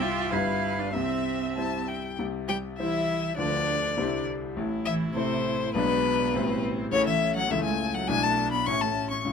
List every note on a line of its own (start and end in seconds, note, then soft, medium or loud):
0.00 0.30 C2 medium
0.00 0.30 C3 medium
0.00 0.28 G3 medium
0.00 0.29 E4 medium
0.00 0.34 F4 loud
0.00 0.33 G4 medium
0.00 0.29 C5 medium
0.00 0.33 E5 medium
0.31 0.92 G1 medium
0.31 0.92 G2 medium
0.31 0.90 G3 medium
0.31 0.80 E4 medium
0.31 0.90 F4 medium
0.31 0.93 B4 medium
0.31 0.91 B4 medium
0.31 0.94 F5 medium
0.79 0.94 D4 medium
0.93 2.15 C2 medium
0.93 2.15 C3 medium
0.93 1.86 C4 medium
0.93 1.97 E5 medium
0.93 1.48 E5 medium
1.56 2.14 G3 soft
1.56 2.15 E4 soft
1.56 2.15 C5 soft
1.56 1.90 A5 medium
1.88 2.18 G5 medium
2.19 3.35 C2 medium
2.19 3.34 C3 medium
2.48 2.56 G3 medium
2.48 2.56 G4 medium
2.48 2.56 G5 medium
2.78 3.36 E3 medium
2.78 3.34 G3 soft
2.78 3.36 E4 medium
2.78 3.34 E4 soft
2.78 3.34 C5 soft
2.78 3.36 E5 medium
3.37 3.95 D2 medium
3.37 4.24 D3 medium
3.37 3.95 D3 medium
3.37 3.93 F3 soft
3.37 4.24 D4 medium
3.37 3.93 F4 soft
3.37 3.93 B4 soft
3.37 4.24 D5 medium
3.97 4.54 C2 medium
3.97 4.54 C3 medium
3.97 4.52 G3 soft
3.97 4.52 E4 soft
3.97 4.53 C5 soft
4.55 5.71 A1 medium
4.55 5.71 A2 medium
4.55 5.76 E4 medium
4.85 5.13 E3 medium
4.85 4.93 E5 medium
5.14 5.73 C3 medium
5.14 5.71 A3 medium
5.14 5.71 E4 medium
5.14 5.73 C5 medium
5.14 5.71 C5 medium
5.74 6.32 B1 medium
5.74 6.61 B2 medium
5.74 6.32 B2 medium
5.74 6.30 G#3 medium
5.74 6.35 D4 medium
5.74 6.30 D4 medium
5.74 6.61 B4 loud
5.74 6.30 D5 medium
6.34 6.90 A1 medium
6.34 6.90 A2 medium
6.34 6.88 G3 medium
6.34 6.91 C4 medium
6.34 6.88 E4 medium
6.34 6.89 C5 medium
6.91 7.48 A1 medium
6.91 7.48 A2 medium
6.91 7.07 C#3 medium
6.91 7.46 A3 medium
6.91 7.52 C#4 medium
6.91 7.46 E4 medium
6.91 7.05 C#5 loud
6.91 7.47 C#5 medium
7.06 7.35 E3 medium
7.06 7.35 E5 medium
7.35 7.41 F#3 medium
7.35 7.52 F#5 medium
7.50 8.06 C#2 medium
7.50 8.06 C#3 medium
7.50 7.56 E3 medium
7.50 8.09 A3 medium
7.50 8.04 A3 medium
7.50 8.04 E4 medium
7.50 7.64 E5 medium
7.50 8.05 E5 medium
7.64 7.73 G#3 medium
7.64 7.96 G#5 medium
7.93 8.10 F#3 medium
7.93 8.09 F#5 medium
8.08 8.65 B1 medium
8.08 8.64 B2 medium
8.08 8.23 G#3 medium
8.08 8.67 D4 medium
8.08 8.62 D4 medium
8.08 8.62 E4 soft
8.08 8.63 E5 soft
8.08 8.24 G#5 loud
8.23 8.54 A3 medium
8.23 8.51 A5 medium
8.52 8.66 B3 medium
8.52 8.68 B5 medium
8.66 9.23 A1 medium
8.66 9.23 A2 medium
8.66 9.24 C#4 medium
8.66 9.21 C#4 soft
8.66 8.81 C#4 medium
8.66 9.21 E4 soft
8.66 9.21 E5 soft
8.66 8.82 C#6 medium
8.81 8.90 A3 medium
8.81 9.10 A5 medium
9.11 9.16 C#4 medium
9.11 9.24 C#6 medium
9.24 9.32 C#2 medium
9.24 9.32 C#3 medium
9.24 9.32 C#4 soft
9.24 9.32 E4 soft
9.24 9.32 E5 soft